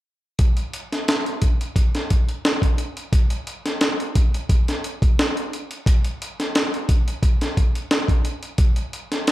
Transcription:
0.39 kick loud
0.39 closed hi-hat medium
0.57 closed hi-hat soft
0.73 closed hi-hat medium
0.92 snare soft
0.92 closed hi-hat soft
1.08 snare loud
1.08 closed hi-hat medium
1.26 closed hi-hat soft
1.42 kick medium
1.42 closed hi-hat medium
1.61 closed hi-hat medium
1.76 kick medium
1.76 closed hi-hat medium
1.95 snare soft
1.95 closed hi-hat medium
2.10 kick medium
2.10 closed hi-hat medium
2.29 closed hi-hat soft
2.45 snare medium
2.45 closed hi-hat medium
2.62 kick medium
2.62 closed hi-hat soft
2.78 closed hi-hat medium
2.97 closed hi-hat medium
3.13 kick loud
3.13 closed hi-hat medium
3.30 closed hi-hat medium
3.47 closed hi-hat medium
3.66 snare soft
3.66 closed hi-hat soft
3.81 snare medium
3.81 closed hi-hat medium
4.00 closed hi-hat soft
4.15 kick medium
4.15 closed hi-hat medium
4.34 closed hi-hat soft
4.49 kick medium
4.49 closed hi-hat medium
4.68 snare soft
4.68 closed hi-hat medium
4.84 closed hi-hat medium
5.02 kick medium
5.02 closed hi-hat soft
5.19 snare loud
5.19 closed hi-hat medium
5.37 closed hi-hat soft
5.53 closed hi-hat medium
5.71 closed hi-hat soft
5.86 kick loud
5.86 closed hi-hat medium
6.05 closed hi-hat soft
6.22 closed hi-hat medium
6.40 snare soft
6.40 closed hi-hat soft
6.55 snare loud
6.55 closed hi-hat medium
6.74 closed hi-hat soft
6.89 kick medium
6.89 closed hi-hat medium
7.08 closed hi-hat medium
7.23 kick medium
7.23 closed hi-hat medium
7.41 snare soft
7.41 closed hi-hat medium
7.57 kick medium
7.57 closed hi-hat medium
7.75 closed hi-hat soft
7.91 snare medium
7.91 closed hi-hat medium
8.08 kick medium
8.08 closed hi-hat soft
8.25 closed hi-hat medium
8.43 closed hi-hat soft
8.58 kick loud
8.58 closed hi-hat medium
8.76 closed hi-hat soft
8.93 closed hi-hat medium
9.12 snare soft
9.12 closed hi-hat soft
9.27 snare loud
9.27 closed hi-hat medium

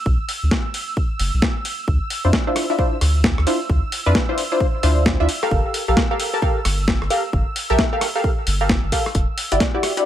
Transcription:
0.00 9.14 E6 medium
0.06 0.17 B1 loud
0.06 kick loud
0.29 open hi-hat medium
0.43 0.50 D2 medium
0.51 kick loud
0.51 snare loud
0.74 open hi-hat loud
0.97 kick loud
1.19 1.31 F#1 medium
1.19 open hi-hat loud
1.34 1.41 B1 medium
1.42 kick loud
1.42 snare loud
1.65 open hi-hat medium
1.88 1.99 D2 medium
1.88 kick loud
2.10 open hi-hat loud
2.24 2.32 F2 medium
2.24 2.39 D4 medium
2.24 2.39 E4 medium
2.24 2.39 F4 medium
2.24 2.39 C5 medium
2.33 kick loud
2.33 snare loud
2.47 2.67 D4 medium
2.47 2.67 E4 medium
2.47 2.67 F4 medium
2.47 2.67 C5 medium
2.56 cross-stick medium
2.56 open hi-hat medium
2.70 2.77 D4 medium
2.70 2.77 E4 medium
2.70 2.77 F4 medium
2.70 2.77 E5 medium
2.79 2.96 D4 medium
2.79 2.96 E4 medium
2.79 2.96 F4 medium
2.79 2.96 C5 medium
2.79 kick loud
3.01 3.34 D2 loud
3.01 cross-stick soft
3.01 open hi-hat loud
3.24 kick loud
3.24 snare loud
3.38 3.45 D2 medium
3.38 cross-stick soft
3.47 3.59 D4 medium
3.47 3.59 E4 medium
3.47 3.59 F4 medium
3.47 3.59 C5 medium
3.47 open hi-hat loud
3.69 3.81 D2 loud
3.69 kick loud
3.92 open hi-hat loud
4.06 4.13 F2 medium
4.06 4.21 D4 loud
4.06 4.21 E4 medium
4.06 4.21 F4 medium
4.06 4.21 B4 loud
4.15 kick loud
4.15 snare loud
4.29 4.44 D4 medium
4.29 4.44 E4 medium
4.29 4.44 F4 medium
4.29 4.44 C5 medium
4.38 open hi-hat loud
4.52 4.67 D4 medium
4.52 4.66 E4 medium
4.52 4.66 F4 medium
4.52 4.66 C5 medium
4.60 kick loud
4.83 5.16 D2 loud
4.83 5.17 D4 loud
4.83 5.17 E4 medium
4.83 5.17 F4 medium
4.83 5.17 C5 loud
4.83 open hi-hat loud
5.06 kick loud
5.06 snare loud
5.20 5.27 D2 medium
5.20 5.28 D4 medium
5.20 5.28 E4 medium
5.20 5.28 F4 medium
5.20 5.28 E5 loud
5.29 open hi-hat loud
5.43 5.85 G4 medium
5.43 5.85 A4 medium
5.43 5.85 A#4 medium
5.43 5.85 F5 medium
5.43 cross-stick soft
5.51 5.63 G1 loud
5.51 kick loud
5.74 open hi-hat loud
5.88 5.95 A#1 medium
5.88 6.03 G4 medium
5.88 6.03 A4 medium
5.88 6.03 A#4 medium
5.88 6.03 F5 medium
5.97 kick loud
5.97 snare loud
6.11 6.30 G4 medium
6.11 6.30 A4 medium
6.11 6.30 A#4 medium
6.11 6.30 F5 medium
6.20 open hi-hat loud
6.33 6.40 G4 medium
6.33 6.40 A4 medium
6.33 6.40 A#4 medium
6.33 6.40 A5 medium
6.42 6.60 G4 medium
6.42 6.60 A4 medium
6.42 6.60 A#4 medium
6.42 6.60 F5 medium
6.42 kick loud
6.65 6.98 G1 loud
6.65 cross-stick soft
6.65 open hi-hat loud
6.88 kick loud
6.88 snare loud
7.02 7.09 G1 medium
7.02 cross-stick soft
7.10 7.23 G4 medium
7.10 7.23 A4 medium
7.10 7.23 A#4 medium
7.10 7.23 F5 medium
7.10 open hi-hat loud
7.33 7.45 G1 loud
7.33 kick loud
7.56 open hi-hat loud
7.70 7.77 A#1 medium
7.70 7.85 G4 loud
7.70 7.85 A4 medium
7.70 7.85 A#4 medium
7.70 7.85 E5 loud
7.79 kick loud
7.79 snare loud
7.93 8.07 G4 medium
7.93 8.07 A4 medium
7.93 8.07 A#4 medium
7.93 8.07 F5 medium
8.01 cross-stick medium
8.01 open hi-hat loud
8.15 8.30 G4 medium
8.15 8.30 A4 medium
8.15 8.30 A#4 medium
8.15 8.30 F5 medium
8.24 kick loud
8.47 8.79 G1 loud
8.47 open hi-hat loud
8.61 8.69 G4 medium
8.61 8.69 A4 medium
8.61 8.69 A#4 medium
8.61 8.69 F5 medium
8.69 kick loud
8.69 snare loud
8.84 8.91 G1 medium
8.92 9.05 G4 medium
8.92 9.05 A4 medium
8.92 9.05 A#4 medium
8.92 9.05 F5 medium
8.92 kick medium
8.92 open hi-hat loud
9.06 cross-stick medium
9.15 9.26 E1 medium
9.15 10.05 E6 medium
9.15 kick loud
9.15 closed hi-hat medium
9.38 open hi-hat loud
9.52 9.59 G1 medium
9.52 9.66 E4 medium
9.52 9.66 F#4 medium
9.52 9.66 G4 medium
9.52 9.66 D5 medium
9.52 closed hi-hat medium
9.60 kick loud
9.60 snare loud
9.60 closed hi-hat medium
9.74 9.94 E4 medium
9.74 9.94 F#4 medium
9.74 9.94 G4 medium
9.74 9.94 D5 medium
9.83 cross-stick medium
9.83 open hi-hat loud
9.97 10.04 E4 medium
9.97 10.04 F#4 medium
9.97 10.04 G4 medium
9.97 10.03 D5 medium
9.97 10.04 F#5 medium
9.97 closed hi-hat medium

